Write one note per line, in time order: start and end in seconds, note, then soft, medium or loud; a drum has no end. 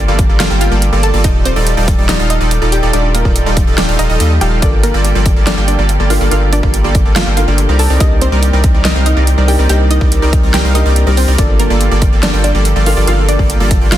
0.00 7.75 F3 medium
0.00 1.21 A3 medium
0.00 1.21 A#3 medium
0.00 1.20 D4 medium
0.00 1.20 G4 medium
0.08 0.27 G1 loud
0.08 0.27 G3 medium
0.08 0.27 A#3 medium
0.08 0.27 F4 medium
0.08 0.27 A4 medium
0.08 0.27 D5 loud
0.19 kick loud
0.19 closed hi-hat medium
0.29 0.38 G1 loud
0.29 0.37 G3 medium
0.29 0.37 A#3 medium
0.29 0.37 F4 medium
0.29 0.37 A4 medium
0.29 0.37 D5 medium
0.40 0.48 G1 loud
0.40 0.48 G3 medium
0.40 0.48 A#3 medium
0.40 0.48 F4 medium
0.40 0.53 F4 medium
0.40 0.48 A4 medium
0.40 0.48 D5 loud
0.40 0.53 F5 medium
0.40 snare loud
0.40 closed hi-hat medium
0.50 0.69 G1 loud
0.50 0.69 G3 medium
0.50 0.69 A#3 medium
0.50 0.69 F4 medium
0.50 0.69 A4 medium
0.50 0.69 G5 loud
0.61 0.74 F4 medium
0.61 0.74 F5 medium
0.61 closed hi-hat medium
0.72 0.91 G1 loud
0.72 0.83 G3 medium
0.72 0.83 A#3 medium
0.72 0.83 F4 medium
0.72 0.83 A4 medium
0.72 0.84 D5 medium
0.82 closed hi-hat medium
0.93 1.12 G1 loud
0.93 1.11 G3 medium
0.93 1.11 A#3 medium
0.93 1.11 F4 medium
0.93 1.11 A4 medium
0.93 1.11 D5 medium
1.03 1.16 A4 medium
1.03 1.16 A5 medium
1.03 closed hi-hat medium
1.14 1.26 G1 loud
1.14 1.22 G3 medium
1.14 1.22 A#3 medium
1.14 1.22 F4 medium
1.14 1.22 A4 medium
1.14 1.22 D5 loud
1.24 1.54 D#1 loud
1.24 1.37 D#4 medium
1.24 4.59 D#4 medium
1.24 11.35 G4 medium
1.24 7.75 A4 medium
1.24 9.44 D5 medium
1.24 1.37 D#5 loud
1.24 kick loud
1.24 closed hi-hat medium
1.45 1.65 C4 medium
1.45 1.65 C5 medium
1.45 closed hi-hat medium
1.56 1.75 D#1 loud
1.56 1.75 G3 medium
1.56 1.75 D#4 medium
1.56 1.75 F4 medium
1.56 1.75 A4 medium
1.56 1.75 D5 loud
1.67 closed hi-hat medium
1.77 1.96 D#1 loud
1.77 1.96 G3 medium
1.77 1.96 D#4 medium
1.77 1.96 F4 medium
1.77 1.96 A4 medium
1.77 1.96 D5 loud
1.88 kick loud
1.88 closed hi-hat medium
1.98 2.07 D#1 loud
1.98 2.06 G3 medium
1.98 2.06 D#4 medium
1.98 2.06 F4 medium
1.98 2.06 A4 medium
1.98 2.06 D5 medium
2.09 2.17 D#1 loud
2.09 2.17 G3 medium
2.09 2.17 D#4 medium
2.09 2.22 D#4 medium
2.09 2.17 F4 medium
2.09 2.17 A4 medium
2.09 2.17 D5 loud
2.09 2.22 D#5 medium
2.09 snare loud
2.09 closed hi-hat medium
2.19 2.39 D#1 loud
2.19 2.38 G3 medium
2.19 2.38 D#4 medium
2.19 2.38 F4 medium
2.19 2.38 A4 medium
2.19 2.38 F5 loud
2.30 2.43 D#4 medium
2.30 2.43 D#5 medium
2.30 closed hi-hat medium
2.41 2.60 D#1 loud
2.41 2.53 G3 medium
2.41 2.53 D#4 medium
2.41 2.52 F4 medium
2.41 2.52 A4 medium
2.41 2.52 D5 medium
2.51 closed hi-hat medium
2.62 2.81 D#1 loud
2.62 2.80 G3 medium
2.62 2.80 D#4 medium
2.62 2.80 F4 medium
2.62 2.80 A4 medium
2.62 2.80 D5 medium
2.72 2.85 G4 medium
2.72 2.85 G5 medium
2.72 closed hi-hat medium
2.83 2.91 D#1 loud
2.83 2.91 G3 medium
2.83 2.91 D#4 medium
2.83 2.91 F4 medium
2.83 2.91 A4 medium
2.83 2.91 D5 loud
2.93 3.23 D#1 loud
2.93 3.23 G3 medium
2.93 3.06 D4 medium
2.93 3.23 D#4 medium
2.93 3.23 F4 medium
2.93 3.23 A4 medium
2.93 3.23 D5 medium
2.93 3.06 D5 loud
2.93 closed hi-hat medium
3.14 3.34 A#3 medium
3.14 3.34 A#4 medium
3.14 closed hi-hat medium
3.25 3.44 D#1 loud
3.25 3.44 G3 loud
3.25 3.44 D#4 medium
3.25 3.44 F4 medium
3.25 3.44 A4 medium
3.25 3.44 D5 loud
3.25 kick medium
3.36 closed hi-hat medium
3.46 3.65 D#1 loud
3.46 3.65 G3 loud
3.46 3.65 D#4 medium
3.46 3.65 F4 medium
3.46 3.65 A4 medium
3.46 3.65 D5 loud
3.57 kick loud
3.57 closed hi-hat medium
3.67 3.76 D#1 loud
3.67 3.75 G3 medium
3.67 3.75 D#4 medium
3.67 3.75 F4 medium
3.67 3.75 A4 medium
3.67 3.75 D5 medium
3.78 3.86 D#1 loud
3.78 3.86 G3 medium
3.78 3.91 D4 medium
3.78 3.86 D#4 medium
3.78 3.86 F4 medium
3.78 3.86 A4 medium
3.78 3.91 D5 medium
3.78 3.86 D5 loud
3.78 snare loud
3.78 closed hi-hat medium
3.88 3.97 D#1 loud
3.88 3.97 G3 medium
3.88 3.97 D#4 medium
3.88 3.97 F4 medium
3.88 3.97 A4 medium
3.88 3.97 F5 loud
3.99 4.08 D#1 loud
3.99 4.07 G3 medium
3.99 4.12 D#4 medium
3.99 4.07 D#4 medium
3.99 4.07 F4 medium
3.99 4.07 A4 medium
3.99 4.12 D#5 medium
3.99 4.07 D#5 medium
3.99 closed hi-hat medium
4.10 4.18 D#1 loud
4.10 4.19 G3 medium
4.10 4.19 D#4 medium
4.10 4.19 F4 medium
4.10 4.19 A4 medium
4.10 4.19 D#5 medium
4.20 4.39 D#2 loud
4.20 4.32 G3 medium
4.20 4.32 D#4 medium
4.20 4.32 F4 medium
4.20 4.32 A4 medium
4.20 4.32 D#5 loud
4.20 closed hi-hat medium
4.41 4.60 D#1 loud
4.41 4.60 G3 medium
4.41 4.60 D#4 medium
4.41 4.60 F4 medium
4.41 4.54 G4 medium
4.41 4.60 A4 medium
4.41 4.60 F5 medium
4.41 4.54 G5 medium
4.41 closed hi-hat medium
4.61 4.92 G1 loud
4.61 6.07 A#3 medium
4.61 4.92 A#3 medium
4.61 13.98 A#3 medium
4.61 6.08 D4 medium
4.61 4.75 D4 medium
4.61 6.08 F4 medium
4.61 4.92 A4 medium
4.61 6.09 A4 loud
4.61 4.75 D5 loud
4.61 4.92 D5 medium
4.61 kick loud
4.61 closed hi-hat medium
4.83 5.03 A#3 medium
4.83 5.03 A#4 medium
4.83 closed hi-hat medium
4.94 5.13 G1 loud
4.94 5.13 G3 loud
4.94 5.13 A#3 medium
4.94 5.13 F4 medium
4.94 5.13 A4 medium
4.94 5.13 D5 loud
5.05 closed hi-hat medium
5.15 5.34 G1 loud
5.15 5.34 G3 loud
5.15 5.34 A#3 medium
5.15 5.34 F4 medium
5.15 5.34 A4 medium
5.15 5.34 D5 loud
5.26 kick loud
5.26 closed hi-hat medium
5.36 5.45 G1 medium
5.36 5.44 G3 medium
5.36 5.44 A#3 medium
5.36 5.44 F4 medium
5.36 5.44 A4 medium
5.36 5.44 D5 medium
5.47 5.55 G1 loud
5.47 5.55 G3 loud
5.47 5.55 A#3 medium
5.47 5.60 D4 medium
5.47 5.55 F4 medium
5.47 5.55 A4 medium
5.47 5.60 D5 medium
5.47 5.55 D5 loud
5.47 snare loud
5.47 closed hi-hat medium
5.57 5.76 G1 medium
5.57 5.76 G3 medium
5.57 5.76 A#3 medium
5.57 5.76 F4 medium
5.57 5.76 A4 medium
5.57 5.76 G5 loud
5.68 5.81 D4 medium
5.68 5.81 D5 medium
5.68 closed hi-hat medium
5.78 5.98 G1 loud
5.78 5.91 G3 medium
5.78 5.91 A#3 medium
5.78 5.91 F4 medium
5.78 5.91 A4 medium
5.78 5.91 D5 medium
5.89 closed hi-hat medium
6.00 6.19 G1 loud
6.00 6.18 G3 medium
6.00 6.18 A#3 medium
6.00 6.18 F4 medium
6.00 6.18 A4 medium
6.00 6.18 D5 medium
6.09 6.28 A#3 medium
6.09 6.29 D4 medium
6.09 6.23 F4 medium
6.09 6.29 F4 medium
6.09 6.30 A4 loud
6.09 6.23 F5 medium
6.09 open hi-hat medium
6.21 6.29 G1 loud
6.21 6.29 G3 medium
6.21 6.29 A#3 medium
6.21 6.29 F4 medium
6.21 6.29 A4 medium
6.21 6.29 D5 loud
6.29 6.61 G1 loud
6.29 6.61 G3 medium
6.29 7.34 A#3 loud
6.29 6.61 A#3 medium
6.29 7.34 D4 medium
6.29 6.44 F4 medium
6.29 6.61 F4 medium
6.29 7.35 F4 medium
6.29 6.61 A4 medium
6.29 7.36 A4 loud
6.29 6.61 D5 medium
6.29 6.44 F5 loud
6.29 closed hi-hat medium
6.53 6.72 D4 medium
6.53 6.72 D5 medium
6.53 closed hi-hat medium
6.63 6.82 G1 loud
6.63 6.82 G3 medium
6.63 6.82 A#3 medium
6.63 6.82 F4 medium
6.63 6.82 A4 medium
6.63 6.82 D5 loud
6.63 kick medium
6.74 closed hi-hat medium
6.84 7.03 G1 loud
6.84 7.03 G3 loud
6.84 7.03 A#3 medium
6.84 7.03 F4 medium
6.84 7.03 A4 medium
6.84 7.03 D5 loud
6.95 kick loud
6.95 closed hi-hat medium
7.05 7.14 G1 loud
7.05 7.14 G3 medium
7.05 7.14 A#3 medium
7.05 7.14 F4 medium
7.05 7.14 A4 medium
7.05 7.14 D5 medium
7.16 7.24 G1 loud
7.16 7.24 G3 medium
7.16 7.24 A#3 medium
7.16 7.29 F4 medium
7.16 7.24 F4 medium
7.16 7.24 A4 medium
7.16 7.24 D5 loud
7.16 7.29 F5 medium
7.16 snare loud
7.16 closed hi-hat medium
7.26 7.46 G1 medium
7.26 7.45 G3 medium
7.26 7.45 A#3 medium
7.26 7.45 F4 medium
7.26 7.45 A4 medium
7.26 7.45 G5 loud
7.36 7.45 A#3 medium
7.36 7.45 D4 medium
7.36 7.50 F4 medium
7.36 7.45 F4 medium
7.36 7.46 A4 medium
7.36 7.50 F5 medium
7.36 closed hi-hat medium
7.47 7.67 G1 loud
7.47 7.60 G3 medium
7.47 7.78 A#3 medium
7.47 7.60 A#3 medium
7.47 7.78 D4 medium
7.47 7.60 F4 medium
7.47 7.78 F4 medium
7.47 7.60 A4 medium
7.47 7.79 A4 medium
7.47 7.60 D5 medium
7.58 closed hi-hat medium
7.69 7.88 C2 loud
7.69 7.87 G3 medium
7.69 7.87 C4 medium
7.69 7.87 D#4 medium
7.69 7.87 A#4 medium
7.69 7.87 D5 medium
7.79 11.35 D#3 medium
7.79 11.35 C4 medium
7.79 7.92 A4 medium
7.79 7.92 A5 medium
7.79 open hi-hat medium
7.90 7.98 C2 loud
7.90 7.98 G3 medium
7.90 7.98 C4 medium
7.90 7.98 D#4 medium
7.90 7.98 A#4 medium
7.90 7.98 D5 loud
7.98 8.30 C2 loud
7.98 8.30 G3 medium
7.98 9.45 A#3 medium
7.98 8.30 C4 medium
7.98 9.46 D4 medium
7.98 8.13 D#4 medium
7.98 8.30 D#4 medium
7.98 9.46 D#4 medium
7.98 9.47 G4 medium
7.98 8.30 A#4 medium
7.98 8.30 D5 medium
7.98 8.13 D#5 loud
7.98 kick loud
7.98 closed hi-hat medium
8.21 8.41 C4 medium
8.21 8.41 C5 medium
8.21 closed hi-hat medium
8.32 8.51 C2 loud
8.32 8.51 G3 medium
8.32 8.51 C4 medium
8.32 8.51 D#4 medium
8.32 8.51 A#4 medium
8.32 8.51 D5 loud
8.43 closed hi-hat medium
8.53 8.72 C2 loud
8.53 8.72 G3 loud
8.53 8.72 C4 medium
8.53 8.72 D#4 medium
8.53 8.72 A#4 medium
8.53 8.72 D5 loud
8.64 kick loud
8.64 closed hi-hat medium
8.74 8.83 C2 loud
8.74 8.82 G3 medium
8.74 8.82 C4 medium
8.74 8.82 D#4 medium
8.74 8.82 A#4 medium
8.74 8.82 D5 medium
8.85 8.93 C2 loud
8.85 8.93 G3 medium
8.85 8.93 C4 medium
8.85 8.98 D#4 medium
8.85 8.93 D#4 medium
8.85 8.93 A#4 medium
8.85 8.93 D5 loud
8.85 8.98 D#5 medium
8.85 snare loud
8.85 closed hi-hat medium
8.95 9.14 C2 loud
8.95 9.14 G3 medium
8.95 9.14 C4 medium
8.95 9.14 D#4 medium
8.95 9.14 A#4 medium
8.95 9.14 F5 loud
9.06 9.19 D#4 medium
9.06 9.19 D#5 medium
9.06 closed hi-hat medium
9.17 9.36 C2 loud
9.17 9.29 G3 medium
9.17 9.29 C4 medium
9.17 9.29 D#4 medium
9.17 9.29 A#4 medium
9.17 9.29 D5 medium
9.27 closed hi-hat medium
9.38 9.57 C2 loud
9.38 9.56 G3 medium
9.38 9.56 C4 medium
9.38 9.56 D#4 medium
9.38 9.56 A#4 medium
9.38 9.56 D5 medium
9.47 9.66 A#3 medium
9.47 9.67 D4 medium
9.47 9.67 D#4 medium
9.47 9.61 G4 medium
9.47 9.67 G4 medium
9.47 9.61 G5 medium
9.47 open hi-hat medium
9.59 9.67 C2 loud
9.59 9.67 G3 medium
9.59 9.67 C4 medium
9.59 9.67 D#4 medium
9.59 9.67 A#4 medium
9.59 9.67 D5 loud
9.68 9.99 C2 loud
9.68 9.99 G3 medium
9.68 10.72 A#3 medium
9.68 9.99 C4 medium
9.68 10.72 D4 medium
9.68 9.99 D#4 medium
9.68 10.73 D#4 medium
9.68 9.82 G4 medium
9.68 10.74 G4 loud
9.68 9.99 A#4 medium
9.68 9.99 D5 medium
9.68 9.82 G5 loud
9.68 closed hi-hat medium
9.91 10.10 D#4 medium
9.91 10.10 D#5 medium
9.91 closed hi-hat medium
10.01 10.20 C2 loud
10.01 10.20 G3 loud
10.01 10.20 C4 medium
10.01 10.20 D#4 medium
10.01 10.20 A#4 medium
10.01 10.20 D5 loud
10.01 kick medium
10.12 closed hi-hat medium
10.22 10.41 C2 loud
10.22 10.41 G3 loud
10.22 10.41 C4 medium
10.22 10.41 D#4 medium
10.22 10.41 A#4 medium
10.22 10.41 D5 loud
10.33 kick loud
10.33 closed hi-hat medium
10.43 10.52 C2 medium
10.43 10.51 G3 medium
10.43 10.51 C4 medium
10.43 10.51 D#4 medium
10.43 10.51 A#4 medium
10.43 10.51 D5 medium
10.54 10.62 C2 loud
10.54 10.62 G3 medium
10.54 10.62 C4 medium
10.54 10.62 D#4 medium
10.54 10.67 G4 medium
10.54 10.62 A#4 medium
10.54 10.62 D5 loud
10.54 10.67 G5 medium
10.54 snare loud
10.54 closed hi-hat medium
10.64 10.84 C2 loud
10.64 10.83 G3 medium
10.64 10.83 C4 medium
10.64 10.83 D#4 medium
10.64 10.83 A#4 medium
10.64 10.83 F5 loud
10.74 11.04 A#3 medium
10.74 11.04 D4 medium
10.74 10.88 D#4 medium
10.74 11.04 D#4 medium
10.74 11.05 G4 loud
10.74 10.88 D#5 medium
10.74 closed hi-hat medium
10.86 11.05 C2 loud
10.86 10.98 G3 medium
10.86 10.98 C4 medium
10.86 10.98 D#4 medium
10.86 10.98 A#4 medium
10.86 10.98 D5 medium
10.96 closed hi-hat medium
11.06 11.26 C2 medium
11.06 11.25 G3 medium
11.06 11.35 A#3 medium
11.06 11.25 C4 medium
11.06 11.36 D4 medium
11.06 11.25 D#4 medium
11.06 11.36 D#4 medium
11.06 11.36 G4 medium
11.06 11.25 A#4 medium
11.06 11.25 D5 medium
11.17 11.30 C4 medium
11.17 11.30 C5 medium
11.17 open hi-hat medium
11.28 11.36 C2 loud
11.28 11.36 G3 medium
11.28 11.36 C4 medium
11.28 11.36 D#4 medium
11.28 11.36 A#4 medium
11.28 11.36 D5 loud
11.36 11.68 G1 loud
11.36 13.98 F3 medium
11.36 11.68 G3 medium
11.36 12.83 A#3 medium
11.36 11.68 A#3 medium
11.36 12.83 D4 medium
11.36 13.98 D4 medium
11.36 11.51 D4 medium
11.36 12.84 F4 medium
11.36 13.98 G4 medium
11.36 13.98 A4 medium
11.36 12.85 A4 medium
11.36 11.51 D5 loud
11.36 kick loud
11.36 closed hi-hat medium
11.60 11.79 A#3 medium
11.60 11.79 A#4 medium
11.60 closed hi-hat medium
11.70 11.89 G1 loud
11.70 11.89 G3 medium
11.70 11.89 A#3 medium
11.70 11.89 F4 medium
11.70 11.89 A4 medium
11.70 11.89 D5 loud
11.81 closed hi-hat medium
11.91 12.10 G1 loud
11.91 12.10 G3 medium
11.91 12.10 A#3 medium
11.91 12.10 F4 medium
11.91 12.10 A4 medium
11.91 12.10 D5 loud
12.02 kick loud
12.02 closed hi-hat medium
12.12 12.21 G1 loud
12.12 12.21 G3 medium
12.12 12.21 A#3 medium
12.12 12.21 F4 medium
12.12 12.21 A4 medium
12.12 12.21 D5 medium
12.23 12.31 G1 loud
12.23 12.31 G3 medium
12.23 12.31 A#3 medium
12.23 12.36 D4 medium
12.23 12.31 F4 medium
12.23 12.31 A4 medium
12.23 12.36 D5 medium
12.23 12.31 D5 loud
12.23 snare loud
12.23 closed hi-hat medium
12.33 12.53 G1 medium
12.33 12.52 G3 medium
12.33 12.52 A#3 medium
12.33 12.52 F4 medium
12.33 12.52 A4 medium
12.33 12.52 G5 loud
12.44 12.57 D4 medium
12.44 12.57 D5 medium
12.44 closed hi-hat medium
12.55 12.74 G1 loud
12.55 12.67 G3 medium
12.55 12.67 A#3 medium
12.55 12.67 F4 medium
12.55 12.67 A4 medium
12.55 12.67 D5 medium
12.65 closed hi-hat medium
12.76 12.95 G1 loud
12.76 12.94 G3 medium
12.76 12.94 A#3 medium
12.76 12.94 F4 medium
12.76 12.94 A4 medium
12.76 12.94 D5 medium
12.85 13.04 A#3 medium
12.85 13.05 D4 medium
12.85 12.99 F4 medium
12.85 13.05 F4 medium
12.85 13.06 A4 medium
12.85 12.99 F5 medium
12.85 open hi-hat medium
12.97 13.05 G1 loud
12.97 13.05 G3 medium
12.97 13.05 A#3 medium
12.97 13.05 F4 medium
12.97 13.05 A4 medium
12.97 13.05 D5 loud
13.06 13.37 G1 loud
13.06 13.37 G3 medium
13.06 13.98 A#3 medium
13.06 13.37 A#3 medium
13.06 13.98 D4 medium
13.06 13.37 F4 medium
13.06 13.20 F4 medium
13.06 13.98 F4 medium
13.06 13.37 A4 medium
13.06 13.98 A4 loud
13.06 13.37 D5 medium
13.06 13.20 F5 loud
13.06 closed hi-hat medium
13.29 13.48 D4 medium
13.29 13.48 D5 medium
13.29 closed hi-hat medium
13.39 13.58 G1 loud
13.39 13.58 G3 medium
13.39 13.58 A#3 medium
13.39 13.58 F4 medium
13.39 13.58 A4 medium
13.39 13.58 D5 loud
13.39 kick medium
13.50 closed hi-hat medium
13.60 13.79 G1 loud
13.60 13.79 G3 loud
13.60 13.79 A#3 medium
13.60 13.79 F4 medium
13.60 13.79 A4 medium
13.60 13.79 D5 loud
13.71 kick loud
13.71 closed hi-hat medium
13.81 13.90 G1 medium
13.81 13.89 G3 medium
13.81 13.89 A#3 medium
13.81 13.90 F4 medium
13.81 13.89 A4 medium
13.81 13.89 D5 medium
13.92 13.98 G1 loud
13.92 13.98 G3 medium
13.92 13.98 A#3 medium
13.92 13.98 F4 medium
13.92 13.98 A4 medium
13.92 13.98 D5 loud
13.92 13.98 F5 medium
13.92 snare loud
13.92 closed hi-hat medium